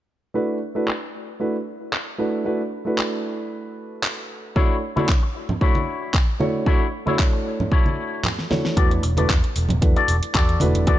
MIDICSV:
0, 0, Header, 1, 7, 480
1, 0, Start_track
1, 0, Tempo, 526316
1, 319, Time_signature, 4, 2, 24, 8
1, 10021, End_track
2, 0, Start_track
2, 0, Title_t, "Clean electric guitar"
2, 0, Program_c, 0, 27
2, 4154, Note_on_c, 0, 62, 107
2, 4159, Note_on_c, 0, 66, 90
2, 4163, Note_on_c, 0, 73, 103
2, 4164, Note_on_c, 0, 64, 85
2, 4343, Note_off_c, 0, 62, 0
2, 4343, Note_off_c, 0, 64, 0
2, 4344, Note_off_c, 0, 66, 0
2, 4344, Note_off_c, 0, 73, 0
2, 4525, Note_on_c, 0, 64, 76
2, 4531, Note_on_c, 0, 73, 85
2, 4534, Note_on_c, 0, 66, 67
2, 4537, Note_on_c, 0, 62, 70
2, 4638, Note_off_c, 0, 62, 0
2, 4639, Note_off_c, 0, 64, 0
2, 4639, Note_off_c, 0, 66, 0
2, 4640, Note_off_c, 0, 73, 0
2, 5115, Note_on_c, 0, 62, 77
2, 5120, Note_on_c, 0, 66, 72
2, 5125, Note_on_c, 0, 73, 81
2, 5128, Note_on_c, 0, 64, 71
2, 5599, Note_off_c, 0, 62, 0
2, 5599, Note_off_c, 0, 64, 0
2, 5599, Note_off_c, 0, 66, 0
2, 5599, Note_off_c, 0, 73, 0
2, 6075, Note_on_c, 0, 62, 104
2, 6080, Note_on_c, 0, 66, 96
2, 6084, Note_on_c, 0, 73, 105
2, 6087, Note_on_c, 0, 64, 77
2, 6263, Note_off_c, 0, 62, 0
2, 6264, Note_off_c, 0, 64, 0
2, 6265, Note_off_c, 0, 66, 0
2, 6265, Note_off_c, 0, 73, 0
2, 6443, Note_on_c, 0, 64, 72
2, 6449, Note_on_c, 0, 73, 82
2, 6455, Note_on_c, 0, 66, 66
2, 6458, Note_on_c, 0, 62, 66
2, 6558, Note_off_c, 0, 62, 0
2, 6558, Note_off_c, 0, 64, 0
2, 6559, Note_off_c, 0, 66, 0
2, 6559, Note_off_c, 0, 73, 0
2, 7033, Note_on_c, 0, 62, 81
2, 7040, Note_on_c, 0, 66, 69
2, 7046, Note_on_c, 0, 73, 84
2, 7048, Note_on_c, 0, 64, 68
2, 7518, Note_off_c, 0, 62, 0
2, 7519, Note_off_c, 0, 64, 0
2, 7519, Note_off_c, 0, 66, 0
2, 7520, Note_off_c, 0, 73, 0
2, 7993, Note_on_c, 0, 66, 108
2, 7998, Note_on_c, 0, 69, 88
2, 8003, Note_on_c, 0, 74, 101
2, 8127, Note_off_c, 0, 66, 0
2, 8128, Note_off_c, 0, 69, 0
2, 8129, Note_off_c, 0, 74, 0
2, 8366, Note_on_c, 0, 74, 91
2, 8368, Note_on_c, 0, 69, 70
2, 8372, Note_on_c, 0, 66, 70
2, 8477, Note_off_c, 0, 66, 0
2, 8478, Note_off_c, 0, 69, 0
2, 8479, Note_off_c, 0, 74, 0
2, 9085, Note_on_c, 0, 74, 111
2, 9087, Note_on_c, 0, 69, 92
2, 9091, Note_on_c, 0, 66, 88
2, 9262, Note_off_c, 0, 66, 0
2, 9262, Note_off_c, 0, 69, 0
2, 9263, Note_off_c, 0, 74, 0
2, 9434, Note_on_c, 0, 66, 82
2, 9438, Note_on_c, 0, 69, 74
2, 9444, Note_on_c, 0, 74, 84
2, 9678, Note_off_c, 0, 66, 0
2, 9678, Note_off_c, 0, 69, 0
2, 9679, Note_off_c, 0, 74, 0
2, 9914, Note_on_c, 0, 66, 116
2, 9918, Note_on_c, 0, 69, 85
2, 9923, Note_on_c, 0, 74, 105
2, 10021, Note_off_c, 0, 66, 0
2, 10021, Note_off_c, 0, 69, 0
2, 10021, Note_off_c, 0, 74, 0
2, 10021, End_track
3, 0, Start_track
3, 0, Title_t, "Grand piano"
3, 0, Program_c, 1, 0
3, 312, Note_on_c, 1, 57, 69
3, 314, Note_on_c, 1, 62, 63
3, 318, Note_on_c, 1, 64, 64
3, 319, Note_on_c, 1, 66, 64
3, 321, Note_on_c, 1, 71, 78
3, 519, Note_off_c, 1, 57, 0
3, 520, Note_off_c, 1, 62, 0
3, 522, Note_off_c, 1, 64, 0
3, 522, Note_off_c, 1, 66, 0
3, 523, Note_off_c, 1, 71, 0
3, 684, Note_on_c, 1, 57, 67
3, 686, Note_on_c, 1, 62, 60
3, 689, Note_on_c, 1, 64, 62
3, 691, Note_on_c, 1, 66, 60
3, 693, Note_on_c, 1, 71, 74
3, 802, Note_off_c, 1, 57, 0
3, 803, Note_off_c, 1, 62, 0
3, 805, Note_off_c, 1, 64, 0
3, 806, Note_off_c, 1, 66, 0
3, 807, Note_off_c, 1, 71, 0
3, 1274, Note_on_c, 1, 57, 66
3, 1276, Note_on_c, 1, 62, 60
3, 1278, Note_on_c, 1, 64, 62
3, 1280, Note_on_c, 1, 66, 61
3, 1283, Note_on_c, 1, 71, 72
3, 1411, Note_off_c, 1, 57, 0
3, 1412, Note_off_c, 1, 62, 0
3, 1413, Note_off_c, 1, 64, 0
3, 1414, Note_off_c, 1, 66, 0
3, 1415, Note_off_c, 1, 71, 0
3, 1991, Note_on_c, 1, 57, 72
3, 1994, Note_on_c, 1, 62, 65
3, 1997, Note_on_c, 1, 64, 68
3, 1997, Note_on_c, 1, 66, 67
3, 2000, Note_on_c, 1, 71, 78
3, 2208, Note_off_c, 1, 57, 0
3, 2210, Note_off_c, 1, 62, 0
3, 2211, Note_off_c, 1, 64, 0
3, 2212, Note_off_c, 1, 66, 0
3, 2213, Note_off_c, 1, 71, 0
3, 2234, Note_on_c, 1, 57, 73
3, 2237, Note_on_c, 1, 62, 66
3, 2239, Note_on_c, 1, 64, 66
3, 2241, Note_on_c, 1, 66, 66
3, 2244, Note_on_c, 1, 71, 82
3, 2371, Note_off_c, 1, 57, 0
3, 2372, Note_off_c, 1, 62, 0
3, 2373, Note_off_c, 1, 64, 0
3, 2375, Note_off_c, 1, 66, 0
3, 2376, Note_off_c, 1, 71, 0
3, 2599, Note_on_c, 1, 57, 71
3, 2604, Note_on_c, 1, 62, 64
3, 2609, Note_on_c, 1, 64, 64
3, 2613, Note_on_c, 1, 66, 66
3, 2618, Note_on_c, 1, 71, 78
3, 4127, Note_off_c, 1, 57, 0
3, 4130, Note_off_c, 1, 62, 0
3, 4132, Note_off_c, 1, 64, 0
3, 4135, Note_off_c, 1, 66, 0
3, 4137, Note_off_c, 1, 71, 0
3, 4155, Note_on_c, 1, 57, 70
3, 4156, Note_on_c, 1, 62, 67
3, 4159, Note_on_c, 1, 64, 65
3, 4162, Note_on_c, 1, 66, 64
3, 4165, Note_on_c, 1, 73, 81
3, 4360, Note_off_c, 1, 57, 0
3, 4361, Note_off_c, 1, 62, 0
3, 4363, Note_off_c, 1, 64, 0
3, 4364, Note_off_c, 1, 66, 0
3, 4365, Note_off_c, 1, 73, 0
3, 4522, Note_on_c, 1, 57, 70
3, 4527, Note_on_c, 1, 62, 62
3, 4529, Note_on_c, 1, 64, 65
3, 4530, Note_on_c, 1, 66, 65
3, 4532, Note_on_c, 1, 73, 75
3, 4641, Note_off_c, 1, 57, 0
3, 4643, Note_off_c, 1, 62, 0
3, 4645, Note_off_c, 1, 64, 0
3, 4645, Note_off_c, 1, 66, 0
3, 4646, Note_off_c, 1, 73, 0
3, 5116, Note_on_c, 1, 57, 69
3, 5119, Note_on_c, 1, 62, 63
3, 5120, Note_on_c, 1, 64, 63
3, 5123, Note_on_c, 1, 66, 64
3, 5127, Note_on_c, 1, 73, 74
3, 5252, Note_off_c, 1, 57, 0
3, 5254, Note_off_c, 1, 62, 0
3, 5254, Note_off_c, 1, 64, 0
3, 5256, Note_off_c, 1, 66, 0
3, 5257, Note_off_c, 1, 73, 0
3, 5832, Note_on_c, 1, 57, 77
3, 5835, Note_on_c, 1, 62, 67
3, 5837, Note_on_c, 1, 64, 67
3, 5841, Note_on_c, 1, 66, 68
3, 5841, Note_on_c, 1, 73, 82
3, 6049, Note_off_c, 1, 57, 0
3, 6050, Note_off_c, 1, 62, 0
3, 6052, Note_off_c, 1, 64, 0
3, 6053, Note_off_c, 1, 66, 0
3, 6054, Note_off_c, 1, 73, 0
3, 6074, Note_on_c, 1, 57, 76
3, 6076, Note_on_c, 1, 62, 69
3, 6079, Note_on_c, 1, 64, 69
3, 6080, Note_on_c, 1, 66, 68
3, 6083, Note_on_c, 1, 73, 86
3, 6211, Note_off_c, 1, 57, 0
3, 6212, Note_off_c, 1, 62, 0
3, 6214, Note_off_c, 1, 64, 0
3, 6214, Note_off_c, 1, 66, 0
3, 6216, Note_off_c, 1, 73, 0
3, 6436, Note_on_c, 1, 57, 75
3, 6440, Note_on_c, 1, 62, 66
3, 6446, Note_on_c, 1, 64, 68
3, 6450, Note_on_c, 1, 66, 68
3, 6455, Note_on_c, 1, 73, 82
3, 7731, Note_off_c, 1, 57, 0
3, 7733, Note_off_c, 1, 62, 0
3, 7735, Note_off_c, 1, 64, 0
3, 7738, Note_off_c, 1, 66, 0
3, 7740, Note_off_c, 1, 73, 0
3, 7754, Note_on_c, 1, 57, 67
3, 7756, Note_on_c, 1, 62, 61
3, 7760, Note_on_c, 1, 64, 63
3, 7761, Note_on_c, 1, 66, 62
3, 7763, Note_on_c, 1, 73, 77
3, 7970, Note_off_c, 1, 57, 0
3, 7971, Note_off_c, 1, 62, 0
3, 7973, Note_off_c, 1, 64, 0
3, 7974, Note_off_c, 1, 66, 0
3, 7975, Note_off_c, 1, 73, 0
3, 7994, Note_on_c, 1, 57, 73
3, 7996, Note_on_c, 1, 62, 68
3, 7998, Note_on_c, 1, 64, 68
3, 8001, Note_on_c, 1, 66, 69
3, 8002, Note_on_c, 1, 71, 81
3, 8200, Note_off_c, 1, 57, 0
3, 8201, Note_off_c, 1, 62, 0
3, 8202, Note_off_c, 1, 64, 0
3, 8203, Note_off_c, 1, 66, 0
3, 8204, Note_off_c, 1, 71, 0
3, 8360, Note_on_c, 1, 57, 72
3, 8363, Note_on_c, 1, 62, 64
3, 8367, Note_on_c, 1, 64, 64
3, 8369, Note_on_c, 1, 66, 64
3, 8369, Note_on_c, 1, 71, 80
3, 8480, Note_off_c, 1, 57, 0
3, 8482, Note_off_c, 1, 62, 0
3, 8483, Note_off_c, 1, 64, 0
3, 8484, Note_off_c, 1, 71, 0
3, 8485, Note_off_c, 1, 66, 0
3, 8951, Note_on_c, 1, 57, 71
3, 8953, Note_on_c, 1, 62, 67
3, 8955, Note_on_c, 1, 64, 64
3, 8957, Note_on_c, 1, 66, 65
3, 8960, Note_on_c, 1, 71, 77
3, 9089, Note_off_c, 1, 57, 0
3, 9090, Note_off_c, 1, 62, 0
3, 9091, Note_off_c, 1, 64, 0
3, 9092, Note_off_c, 1, 66, 0
3, 9094, Note_off_c, 1, 71, 0
3, 9669, Note_on_c, 1, 57, 75
3, 9672, Note_on_c, 1, 62, 69
3, 9675, Note_on_c, 1, 64, 69
3, 9677, Note_on_c, 1, 66, 70
3, 9679, Note_on_c, 1, 71, 87
3, 9888, Note_off_c, 1, 57, 0
3, 9889, Note_off_c, 1, 62, 0
3, 9891, Note_off_c, 1, 64, 0
3, 9891, Note_off_c, 1, 66, 0
3, 9893, Note_off_c, 1, 71, 0
3, 9911, Note_on_c, 1, 57, 78
3, 9913, Note_on_c, 1, 62, 70
3, 9915, Note_on_c, 1, 64, 70
3, 9918, Note_on_c, 1, 66, 71
3, 9920, Note_on_c, 1, 71, 88
3, 10021, Note_off_c, 1, 57, 0
3, 10021, Note_off_c, 1, 62, 0
3, 10021, Note_off_c, 1, 64, 0
3, 10021, Note_off_c, 1, 66, 0
3, 10021, Note_off_c, 1, 71, 0
3, 10021, End_track
4, 0, Start_track
4, 0, Title_t, "Picked electric bass"
4, 0, Program_c, 2, 34
4, 7997, Note_on_c, 2, 40, 93
4, 8182, Note_off_c, 2, 40, 0
4, 8238, Note_on_c, 2, 28, 88
4, 8423, Note_off_c, 2, 28, 0
4, 8477, Note_on_c, 2, 40, 86
4, 8575, Note_off_c, 2, 40, 0
4, 8718, Note_on_c, 2, 28, 79
4, 8815, Note_off_c, 2, 28, 0
4, 8848, Note_on_c, 2, 28, 89
4, 8931, Note_off_c, 2, 28, 0
4, 8956, Note_on_c, 2, 40, 93
4, 9054, Note_off_c, 2, 40, 0
4, 9196, Note_on_c, 2, 28, 89
4, 9294, Note_off_c, 2, 28, 0
4, 9437, Note_on_c, 2, 40, 83
4, 9622, Note_off_c, 2, 40, 0
4, 9676, Note_on_c, 2, 28, 85
4, 9775, Note_off_c, 2, 28, 0
4, 9806, Note_on_c, 2, 28, 99
4, 9889, Note_off_c, 2, 28, 0
4, 9916, Note_on_c, 2, 40, 92
4, 10021, Note_off_c, 2, 40, 0
4, 10021, End_track
5, 0, Start_track
5, 0, Title_t, "Muted clean electric guitar strokes"
5, 4767, Note_on_c, 9, 29, 84
5, 4859, Note_off_c, 9, 29, 0
5, 4877, Note_on_c, 9, 29, 32
5, 4969, Note_off_c, 9, 29, 0
5, 6687, Note_on_c, 9, 29, 77
5, 6778, Note_off_c, 9, 29, 0
5, 6798, Note_on_c, 9, 29, 30
5, 6889, Note_off_c, 9, 29, 0
5, 8233, Note_on_c, 9, 29, 79
5, 8324, Note_off_c, 9, 29, 0
5, 8605, Note_on_c, 9, 29, 31
5, 8696, Note_off_c, 9, 29, 0
5, 8845, Note_on_c, 9, 29, 32
5, 8936, Note_off_c, 9, 29, 0
5, 10021, End_track
6, 0, Start_track
6, 0, Title_t, "Muted picked electric bass strokes"
6, 9326, Note_on_c, 9, 29, 40
6, 9417, Note_off_c, 9, 29, 0
6, 10021, End_track
7, 0, Start_track
7, 0, Title_t, "Drums"
7, 801, Note_on_c, 9, 39, 109
7, 892, Note_off_c, 9, 39, 0
7, 1761, Note_on_c, 9, 39, 107
7, 1853, Note_off_c, 9, 39, 0
7, 2720, Note_on_c, 9, 39, 112
7, 2811, Note_off_c, 9, 39, 0
7, 3680, Note_on_c, 9, 39, 113
7, 3771, Note_off_c, 9, 39, 0
7, 4158, Note_on_c, 9, 36, 110
7, 4249, Note_off_c, 9, 36, 0
7, 4531, Note_on_c, 9, 63, 83
7, 4622, Note_off_c, 9, 63, 0
7, 4638, Note_on_c, 9, 36, 117
7, 4640, Note_on_c, 9, 39, 110
7, 4730, Note_off_c, 9, 36, 0
7, 4731, Note_off_c, 9, 39, 0
7, 5008, Note_on_c, 9, 64, 77
7, 5099, Note_off_c, 9, 64, 0
7, 5118, Note_on_c, 9, 36, 112
7, 5209, Note_off_c, 9, 36, 0
7, 5244, Note_on_c, 9, 63, 65
7, 5335, Note_off_c, 9, 63, 0
7, 5598, Note_on_c, 9, 36, 114
7, 5601, Note_on_c, 9, 39, 113
7, 5689, Note_off_c, 9, 36, 0
7, 5692, Note_off_c, 9, 39, 0
7, 5840, Note_on_c, 9, 63, 83
7, 5932, Note_off_c, 9, 63, 0
7, 6077, Note_on_c, 9, 36, 107
7, 6169, Note_off_c, 9, 36, 0
7, 6447, Note_on_c, 9, 63, 79
7, 6538, Note_off_c, 9, 63, 0
7, 6557, Note_on_c, 9, 36, 117
7, 6560, Note_on_c, 9, 39, 107
7, 6648, Note_off_c, 9, 36, 0
7, 6651, Note_off_c, 9, 39, 0
7, 6931, Note_on_c, 9, 64, 73
7, 7023, Note_off_c, 9, 64, 0
7, 7037, Note_on_c, 9, 36, 110
7, 7128, Note_off_c, 9, 36, 0
7, 7167, Note_on_c, 9, 63, 61
7, 7259, Note_off_c, 9, 63, 0
7, 7512, Note_on_c, 9, 64, 66
7, 7520, Note_on_c, 9, 39, 111
7, 7603, Note_off_c, 9, 64, 0
7, 7611, Note_off_c, 9, 39, 0
7, 7649, Note_on_c, 9, 38, 47
7, 7740, Note_off_c, 9, 38, 0
7, 7758, Note_on_c, 9, 38, 75
7, 7764, Note_on_c, 9, 63, 85
7, 7849, Note_off_c, 9, 38, 0
7, 7856, Note_off_c, 9, 63, 0
7, 7888, Note_on_c, 9, 38, 77
7, 7979, Note_off_c, 9, 38, 0
7, 7997, Note_on_c, 9, 36, 110
7, 7998, Note_on_c, 9, 42, 52
7, 8088, Note_off_c, 9, 36, 0
7, 8090, Note_off_c, 9, 42, 0
7, 8128, Note_on_c, 9, 42, 26
7, 8219, Note_off_c, 9, 42, 0
7, 8238, Note_on_c, 9, 46, 101
7, 8329, Note_off_c, 9, 46, 0
7, 8363, Note_on_c, 9, 63, 85
7, 8368, Note_on_c, 9, 42, 51
7, 8454, Note_off_c, 9, 63, 0
7, 8459, Note_off_c, 9, 42, 0
7, 8476, Note_on_c, 9, 36, 112
7, 8478, Note_on_c, 9, 42, 51
7, 8481, Note_on_c, 9, 39, 115
7, 8568, Note_off_c, 9, 36, 0
7, 8570, Note_off_c, 9, 42, 0
7, 8572, Note_off_c, 9, 39, 0
7, 8608, Note_on_c, 9, 42, 27
7, 8699, Note_off_c, 9, 42, 0
7, 8716, Note_on_c, 9, 46, 102
7, 8807, Note_off_c, 9, 46, 0
7, 8834, Note_on_c, 9, 64, 80
7, 8848, Note_on_c, 9, 42, 52
7, 8925, Note_off_c, 9, 64, 0
7, 8939, Note_off_c, 9, 42, 0
7, 8956, Note_on_c, 9, 36, 113
7, 8956, Note_on_c, 9, 42, 53
7, 8959, Note_on_c, 9, 63, 57
7, 9047, Note_off_c, 9, 36, 0
7, 9047, Note_off_c, 9, 42, 0
7, 9050, Note_off_c, 9, 63, 0
7, 9087, Note_on_c, 9, 42, 26
7, 9178, Note_off_c, 9, 42, 0
7, 9195, Note_on_c, 9, 46, 97
7, 9287, Note_off_c, 9, 46, 0
7, 9326, Note_on_c, 9, 42, 54
7, 9417, Note_off_c, 9, 42, 0
7, 9436, Note_on_c, 9, 36, 111
7, 9436, Note_on_c, 9, 42, 54
7, 9438, Note_on_c, 9, 39, 116
7, 9527, Note_off_c, 9, 36, 0
7, 9527, Note_off_c, 9, 42, 0
7, 9529, Note_off_c, 9, 39, 0
7, 9566, Note_on_c, 9, 42, 25
7, 9657, Note_off_c, 9, 42, 0
7, 9668, Note_on_c, 9, 63, 95
7, 9675, Note_on_c, 9, 46, 98
7, 9759, Note_off_c, 9, 63, 0
7, 9766, Note_off_c, 9, 46, 0
7, 9804, Note_on_c, 9, 42, 52
7, 9895, Note_off_c, 9, 42, 0
7, 9913, Note_on_c, 9, 42, 49
7, 9916, Note_on_c, 9, 36, 113
7, 10004, Note_off_c, 9, 42, 0
7, 10007, Note_off_c, 9, 36, 0
7, 10021, End_track
0, 0, End_of_file